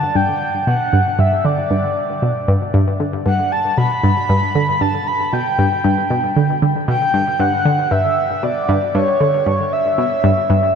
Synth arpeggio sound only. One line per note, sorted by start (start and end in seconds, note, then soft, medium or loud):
0.15 0.29 G2 medium
0.67 0.75 B2 medium
0.93 1.01 G2 loud
1.19 1.39 G2 loud
1.45 1.65 D3 medium
1.71 1.84 G2 medium
2.22 2.30 B2 medium
2.48 2.56 G2 loud
2.74 2.94 G2 loud
3.00 3.20 D3 medium
3.26 3.39 G2 medium
3.78 3.86 B2 medium
4.04 4.12 G2 loud
4.29 4.50 G2 loud
4.55 4.75 D3 medium
4.81 4.94 G2 medium
5.33 5.41 B2 medium
5.59 5.67 G2 loud
5.84 6.05 G2 loud
6.10 6.24 B2 medium
6.36 6.56 D3 medium
6.62 6.82 D3 medium
6.88 6.96 B2 medium
7.14 7.22 G2 loud
7.40 7.60 G2 loud
7.65 7.86 D3 medium
7.91 8.05 G2 medium
8.43 8.51 B2 medium
8.69 8.77 G2 loud
8.95 9.15 G2 loud
9.21 9.41 D3 medium
9.46 9.60 G2 medium
9.98 10.06 B2 medium
10.24 10.32 G2 loud
10.50 10.70 G2 loud